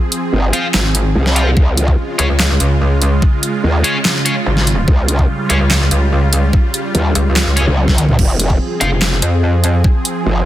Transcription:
0.00 1.53 F3 medium
0.00 1.53 C4 medium
0.00 1.53 G#4 medium
0.12 closed hi-hat medium
0.33 0.52 G1 loud
0.53 0.66 F4 medium
0.53 0.66 C5 medium
0.53 0.66 F5 medium
0.53 closed hi-hat medium
0.74 1.14 G#1 medium
0.74 snare loud
0.74 clap medium
0.95 closed hi-hat medium
1.15 1.55 C2 loud
1.26 snare soft
1.36 1.48 F4 medium
1.36 1.48 C5 medium
1.36 1.48 F5 medium
1.36 closed hi-hat medium
1.57 1.96 C#2 loud
1.57 8.15 C#3 medium
1.57 4.84 G#3 medium
1.57 8.15 F4 medium
1.57 kick loud
1.77 closed hi-hat medium
1.88 kick medium
2.19 2.59 C#2 loud
2.19 2.27 C#4 medium
2.19 2.27 G#4 medium
2.19 2.27 C#5 loud
2.19 closed hi-hat medium
2.39 snare loud
2.39 clap medium
2.60 3.21 C#2 loud
2.60 closed hi-hat medium
3.02 closed hi-hat medium
3.22 kick loud
3.43 closed hi-hat medium
3.64 3.83 D#2 loud
3.84 3.97 C#4 medium
3.84 3.97 G#4 medium
3.84 3.97 C#5 medium
3.84 closed hi-hat medium
4.05 snare loud
4.05 clap medium
4.25 4.33 C#4 medium
4.25 4.33 G#4 medium
4.25 4.33 C#5 medium
4.25 closed hi-hat medium
4.46 4.86 G#1 loud
4.57 snare soft
4.67 closed hi-hat medium
4.88 5.28 C#2 loud
4.88 8.15 G3 medium
4.88 kick loud
5.08 closed hi-hat medium
5.19 kick medium
5.50 5.90 C#2 loud
5.50 5.58 C#4 medium
5.50 5.58 G#4 medium
5.50 5.58 C#5 loud
5.50 closed hi-hat medium
5.71 snare loud
5.71 clap medium
5.91 6.52 C#2 loud
5.91 closed hi-hat medium
6.33 closed hi-hat medium
6.53 kick loud
6.74 closed hi-hat medium
6.95 7.14 D#2 loud
6.95 closed hi-hat soft
7.15 7.45 C#2 loud
7.15 closed hi-hat medium
7.36 snare loud
7.36 clap medium
7.47 7.66 C#2 loud
7.56 7.64 C#4 medium
7.56 7.64 G#4 medium
7.56 7.64 C#5 medium
7.56 closed hi-hat medium
7.67 8.07 C#2 medium
7.77 high tom medium
7.88 kick medium
7.88 snare soft
7.88 high tom medium
7.98 closed hi-hat medium
7.98 mid tom medium
8.09 8.17 C#2 loud
8.09 mid tom medium
8.19 8.59 F1 loud
8.19 10.45 F3 medium
8.19 10.45 C4 medium
8.19 10.45 G#4 medium
8.19 kick loud
8.19 crash medium
8.39 closed hi-hat medium
8.50 kick medium
8.81 9.21 F1 loud
8.81 8.89 F4 medium
8.81 8.89 C5 medium
8.81 8.89 F5 medium
8.81 closed hi-hat medium
9.02 snare loud
9.02 clap medium
9.22 9.83 F2 loud
9.22 closed hi-hat medium
9.64 closed hi-hat medium
9.84 kick loud
10.05 closed hi-hat medium
10.26 10.45 G1 loud

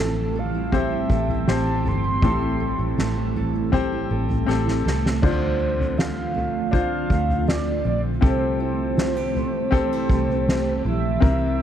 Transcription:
0.00 1.06 A1 medium
0.00 0.31 A2 medium
0.00 0.72 A2 medium
0.00 5.18 E3 medium
0.00 5.19 G3 medium
0.00 5.19 A3 medium
0.00 0.65 C4 medium
0.00 5.19 C4 medium
0.00 0.15 E4 medium
0.00 0.65 G4 medium
0.00 2.20 G4 medium
0.00 0.35 A4 medium
0.00 0.40 A4 medium
0.00 0.66 A4 medium
0.16 0.53 E4 medium
0.35 0.73 A4 medium
0.35 0.77 F5 medium
0.54 0.90 E4 medium
0.72 2.22 A2 medium
0.72 1.44 C4 medium
0.72 1.44 G4 medium
0.72 1.10 A4 medium
0.72 1.44 C5 medium
0.72 kick medium
0.72 floor tom medium
0.76 1.53 E5 medium
0.92 1.29 E4 medium
1.10 1.45 A1 medium
1.10 1.48 A4 medium
1.10 kick medium
1.28 1.65 E4 medium
1.28 floor tom medium
1.48 1.83 A1 medium
1.48 2.19 C4 medium
1.48 2.19 G4 medium
1.48 1.85 A4 medium
1.48 2.19 C5 medium
1.48 snare loud
1.52 1.89 A5 loud
1.66 2.03 E4 medium
1.84 2.20 G1 medium
1.84 2.23 A4 medium
1.84 3.37 C6 loud
1.84 floor tom medium
2.04 2.41 E4 medium
2.22 2.75 A1 medium
2.22 3.72 A2 medium
2.22 3.32 A2 medium
2.22 3.65 C4 medium
2.22 3.66 G4 medium
2.22 5.20 A4 medium
2.22 2.60 A4 medium
2.22 3.66 A4 medium
2.22 kick loud
2.22 floor tom loud
2.42 2.78 E4 medium
2.60 2.98 A4 medium
2.79 2.96 A1 medium
2.79 3.16 E4 medium
2.98 4.06 A1 medium
2.98 3.36 A4 medium
2.98 snare medium
3.17 3.54 E4 medium
3.35 3.73 A4 medium
3.35 floor tom soft
3.55 3.91 E4 medium
3.72 5.30 A2 medium
3.72 4.44 C4 medium
3.72 4.44 G4 medium
3.72 4.10 A4 medium
3.72 4.44 C5 medium
3.72 kick medium
3.72 floor tom medium
3.93 4.27 E4 medium
4.11 4.45 A1 medium
4.11 4.47 A4 medium
4.28 4.64 E4 medium
4.28 floor tom medium
4.46 4.83 A1 medium
4.46 5.18 C4 medium
4.46 5.19 G4 medium
4.46 4.84 A4 medium
4.46 5.19 A4 medium
4.46 snare soft
4.66 5.03 E4 medium
4.66 snare medium
4.85 5.20 C2 medium
4.85 5.23 A4 medium
4.85 snare medium
5.04 5.30 E4 medium
5.04 snare medium
5.22 7.06 D2 medium
5.22 8.19 D3 medium
5.22 8.22 D3 medium
5.22 6.31 D3 medium
5.22 8.20 F3 medium
5.22 11.18 A3 medium
5.22 11.18 C4 medium
5.22 6.65 D4 medium
5.22 8.20 F4 medium
5.22 6.65 F4 medium
5.22 5.97 F4 medium
5.22 6.66 C5 medium
5.22 6.00 C5 medium
5.22 kick loud
5.22 floor tom loud
5.22 crash medium
5.60 6.71 C4 medium
5.80 floor tom medium
5.98 7.46 F4 medium
5.98 6.73 F5 medium
5.98 snare medium
6.34 7.10 A3 medium
6.34 floor tom medium
6.71 7.85 C4 medium
6.71 8.14 D4 medium
6.71 8.15 F4 medium
6.71 8.15 C5 medium
6.71 7.49 F5 medium
6.71 kick medium
6.71 floor tom medium
7.10 7.81 D2 medium
7.10 9.20 A3 medium
7.10 kick medium
7.29 floor tom medium
7.48 8.22 F4 medium
7.48 7.85 D5 medium
7.48 snare loud
7.85 8.20 A#1 medium
7.85 8.60 C4 medium
7.85 8.01 D5 medium
8.21 10.06 C2 medium
8.21 9.30 C3 medium
8.21 11.22 C3 medium
8.21 11.62 E3 medium
8.21 11.62 G3 medium
8.21 9.64 C4 medium
8.21 9.65 G4 medium
8.21 11.62 G4 medium
8.21 8.97 G4 medium
8.21 9.65 A4 medium
8.21 kick loud
8.21 floor tom loud
8.26 8.59 C5 medium
8.60 9.73 E4 medium
8.60 10.82 C5 loud
8.97 9.17 F4 medium
8.97 snare loud
9.17 10.47 G4 medium
9.35 10.11 A3 medium
9.35 floor tom medium
9.71 11.14 C4 medium
9.71 9.93 D4 medium
9.71 11.15 G4 medium
9.71 11.15 A4 medium
9.71 kick medium
9.71 floor tom medium
9.93 10.85 E4 soft
10.09 10.81 C2 medium
10.09 11.31 A3 medium
10.09 kick medium
10.29 floor tom medium
10.48 11.23 G4 medium
10.48 snare loud
10.85 11.20 A#1 medium
10.85 11.60 E4 medium
10.85 11.62 E5 loud
11.20 11.62 C2 medium
11.20 11.62 C3 medium
11.20 11.62 A#3 medium
11.20 11.62 C4 medium
11.20 11.62 E4 medium
11.20 11.62 G4 medium
11.20 11.62 A#4 medium
11.20 kick loud
11.20 floor tom loud

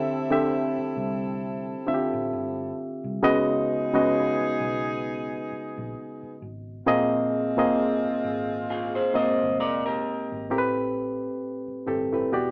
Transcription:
0.00 0.37 D2 medium
0.00 0.14 D3 loud
0.00 0.14 A3 loud
0.00 0.14 C4 medium
0.00 2.73 C4 medium
0.00 2.73 E4 medium
0.00 0.14 G4 loud
0.00 2.73 A4 medium
0.00 0.14 E5 loud
0.31 1.53 D3 medium
0.31 1.53 A3 medium
0.31 1.54 C4 medium
0.31 1.54 G4 medium
0.31 1.54 E5 medium
0.77 muted fingered electric bass stroke soft
0.96 1.73 C2 loud
1.86 2.95 D3 medium
1.86 2.95 A3 medium
1.86 2.96 C4 medium
1.86 1.94 F4 medium
1.86 2.96 E5 medium
1.86 muted fingered electric bass stroke soft
1.94 2.99 G4 medium
2.13 2.29 A1 loud
2.33 2.71 G1 medium
3.04 3.20 C2 medium
3.23 4.01 C#2 medium
3.23 3.77 C#3 loud
3.23 3.77 G#3 loud
3.23 6.37 B3 medium
3.23 3.77 B3 loud
3.23 6.37 D#4 medium
3.23 3.78 F#4 loud
3.23 6.37 G#4 medium
3.23 3.78 D#5 loud
3.94 5.35 C#3 medium
3.94 5.35 G#3 medium
3.94 5.36 B3 medium
3.94 5.36 F#4 medium
3.94 5.36 D#5 medium
4.41 muted fingered electric bass stroke soft
4.60 5.37 B1 medium
5.52 muted fingered electric bass stroke soft
5.77 5.93 A#1 medium
6.23 muted fingered electric bass stroke soft
6.42 6.80 G#1 medium
6.86 7.64 A#1 loud
6.86 7.41 A#2 loud
6.86 10.00 G#3 medium
6.86 7.41 A#3 loud
6.86 10.00 C4 medium
6.86 7.41 C4 loud
6.86 10.00 F4 medium
6.86 7.41 G#4 loud
6.86 7.41 D#5 loud
7.57 8.80 A#2 medium
7.57 8.80 A#3 medium
7.57 8.81 C4 medium
7.57 8.81 G#4 medium
7.57 8.81 D#5 medium
8.05 muted fingered electric bass stroke soft
8.24 9.01 G#1 medium
8.70 8.94 F4 medium
8.70 8.94 G#4 medium
8.95 9.14 G#4 medium
8.95 9.13 C5 medium
9.13 10.22 A#2 medium
9.13 10.23 G#3 medium
9.13 10.23 A#3 medium
9.13 10.23 C4 medium
9.13 9.58 C5 medium
9.13 10.23 D#5 medium
9.13 9.58 D#5 medium
9.13 muted fingered electric bass stroke soft
9.41 9.61 G1 medium
9.60 9.99 F1 medium
9.60 9.84 A#4 medium
9.60 9.84 D5 medium
9.86 10.48 G4 medium
9.86 10.47 A#4 medium
10.32 10.48 G#1 loud
10.50 11.28 A1 medium
10.50 11.59 A2 loud
10.50 11.59 A3 medium
10.50 11.59 C4 medium
10.50 11.59 G4 medium
10.50 10.58 A#4 medium
10.58 11.63 B4 loud
11.68 muted fingered electric bass stroke soft
11.86 12.26 G1 medium
11.86 12.06 A2 medium
11.86 12.07 A3 medium
11.86 12.07 C4 medium
11.86 12.07 G4 medium
11.86 12.07 A4 medium
12.12 12.32 A2 medium
12.12 12.32 A3 medium
12.12 12.32 C4 medium
12.12 12.32 G4 medium
12.12 12.33 B4 medium
12.32 12.51 E1 medium
12.32 12.51 E3 medium
12.32 12.51 B3 medium
12.32 12.51 F#4 medium
12.32 12.51 G4 medium
12.32 12.51 D5 medium

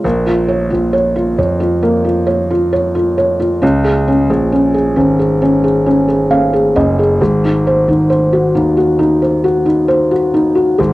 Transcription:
0.04 0.68 A#1 medium
0.04 1.81 A#3 soft
0.26 0.69 F4 soft
0.48 0.92 C#5 soft
0.70 1.35 A#1 medium
0.70 1.14 F4 soft
0.93 1.37 C#5 soft
1.16 1.59 F4 soft
1.38 3.59 F2 medium
1.38 2.25 C#5 soft
1.60 2.03 F4 soft
1.83 3.58 A#3 medium
2.04 2.49 F4 soft
2.27 2.71 C#5 soft
2.51 2.94 F4 soft
2.73 3.16 C#5 soft
2.95 3.38 F4 soft
3.18 3.61 C#5 soft
3.40 3.62 F4 soft
3.62 4.26 C#2 medium
3.62 4.06 C#4 soft
3.85 4.29 G#4 soft
4.08 4.51 C#4 soft
4.30 4.93 A#1 medium
4.30 4.73 G#4 soft
4.52 4.95 C#4 soft
4.74 5.18 G#4 soft
4.96 6.72 G#1 medium
4.96 5.40 C#4 soft
5.19 5.62 G#4 soft
5.42 5.85 C#4 medium
5.64 6.07 G#4 soft
5.86 6.29 C#4 soft
6.08 6.52 G#4 soft
6.31 6.74 C#4 soft
6.31 6.73 F5 medium
6.53 6.98 G#4 soft
6.76 7.18 F#1 medium
6.76 7.19 C#4 soft
6.76 7.18 D#5 medium
6.99 7.21 G#4 soft
7.21 7.84 G#1 medium
7.21 10.76 G#3 medium
7.44 7.87 D#4 soft
7.67 8.08 C5 soft
7.88 8.55 G#1 medium
7.88 8.53 D#4 soft
8.10 9.21 C5 soft
8.33 8.75 F#4 soft
8.55 10.75 D#2 medium
8.55 8.97 D#4 soft
8.77 9.42 F#4 soft
8.99 9.64 D#4 medium
9.22 9.87 C5 soft
9.44 10.10 F#4 medium
9.66 10.32 D#4 soft
9.88 10.76 C5 soft
10.11 10.54 F#4 soft
10.34 10.78 D#4 soft
10.55 10.78 F#4 soft
10.78 10.93 G#1 medium
10.78 10.93 G#3 medium

